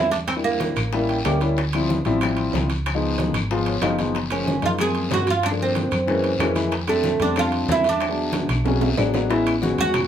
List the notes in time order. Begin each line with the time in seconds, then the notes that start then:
Already playing: E2 E4
0.11 D4, high conga, high timbale, short guiro
0.28 C4, high bongo, high conga, high timbale, long guiro, claves
0.36 G3 A#3 D4 E4
0.44 A#3, high conga
0.60 high bongo, high conga, high timbale, low timbale, short guiro
0.76 A1, high bongo, high conga, high timbale, short guiro, claves
0.93 G3 A#3 C#4 E4, high bongo, high conga, long guiro
1.09 G5, high bongo, high conga, high timbale
1.25 D2 G3 A#3 C#4 G4 E5, high bongo, low bongo, high conga, high timbale, low timbale, short guiro, claves
1.41 G3 A#3 C#4 E4 C#5, high bongo, high timbale, short guiro
1.57 high bongo, high conga, high timbale, long guiro
1.73 F3 G3 C4 E4, high conga, high timbale, claves
1.89 high bongo, high conga, low timbale, short guiro
2.05 A1 F3 G3 C4 E4, high conga, high timbale, short guiro
2.21 F3 G3 C4 E4, high bongo, high conga, high timbale, long guiro, claves
2.37 high conga, high timbale
2.53 C#2, high bongo, low bongo, high conga, low timbale, short guiro
2.70 high conga, high timbale, short guiro
2.86 high bongo, high conga, high timbale, long guiro, claves
2.94 F3 G#3 B3 D#4
3.04 high conga
3.18 high bongo, high conga, high timbale, low timbale, short guiro
3.33 G#1, high bongo, high conga, high timbale, short guiro, claves
3.51 F3 G#3 B3 F4, high bongo, high conga, long guiro
3.66 C#5, high bongo, high conga, high timbale
3.82 F#1 F3 G#3 B3 D#4 F5, high bongo, low bongo, high timbale, low timbale, short guiro, claves
3.99 F3 G#3 B3 D#4 G#5, high bongo, high conga, high timbale, short guiro
4.15 high bongo, high conga, high timbale, long guiro
4.30 F3 G#3 A#3 C#4, high conga, high timbale, claves
4.46 high bongo, high conga, low timbale, short guiro
4.62 F#2 F3 G#3 A#3 D#4 F4, high conga, high timbale, short guiro
4.79 F3 G#3 A#3 C4 G#4, high bongo, high conga, high timbale, long guiro, claves
4.95 high conga, high timbale
5.11 G2 F#4, high bongo, low bongo, high conga, low timbale, short guiro
5.27 F4, high conga, high timbale, short guiro
5.43 D4, high bongo, high conga, high timbale, long guiro, claves
5.51 F3 A3 A#3 D4
5.60 C4, high conga
5.75 high bongo, high conga, high timbale, low timbale, short guiro
5.91 F#2, high bongo, high conga, high timbale, short guiro, claves
6.07 E3 G#3 A#3 C#4, high bongo, high conga, long guiro
6.24 high bongo, high timbale
6.39 F2 E3 G#3 A#3 C#4, high bongo, low bongo, high conga, high timbale, low timbale, short guiro, claves
6.55 E3 G#3 A#3 E4, high bongo, high conga, high timbale, short guiro
6.71 high bongo, high conga, high timbale, long guiro
6.87 G3 A3 C4 D4, high conga, high timbale, claves
7.04 high bongo, high conga, low timbale, short guiro
7.20 F2 G3 A3 C4 D4, high conga, high timbale, short guiro
7.36 G3 A3 C4 D4 F4, high bongo, high conga, high timbale, long guiro, claves
7.52 high conga, high timbale
7.68 E2 E4, high bongo, low bongo, high conga, low timbale, short guiro
7.84 high conga, high timbale, short guiro
7.89 D4
8.00 high bongo, high timbale, long guiro, claves
8.08 F#3 G#3 B3 D4
8.17 high conga
8.33 high bongo, high conga, high timbale, low timbale, short guiro
8.49 B1, high bongo, high conga, high timbale, short guiro, claves
8.64 F#3 G#3 B3 C#4, high bongo, high conga, high timbale, long guiro
8.81 E5, low bongo, high conga, high timbale
8.97 A1 F#3 G#3 B3 D4 G#5, low bongo, high conga, low timbale, short guiro, claves
9.14 F#3 G#3 B3 D4, low bongo, low timbale, short guiro
9.30 G#3 B3 C#4 E4, high bongo, high conga, high timbale, long guiro
9.47 high conga, high timbale, claves
9.61 G#3 B3 C#4 F#4, high bongo, high conga, low timbale, short guiro
9.78 E2 F#4, high conga, high timbale, short guiro
9.94 high bongo, high conga, low conga, high timbale, long guiro, claves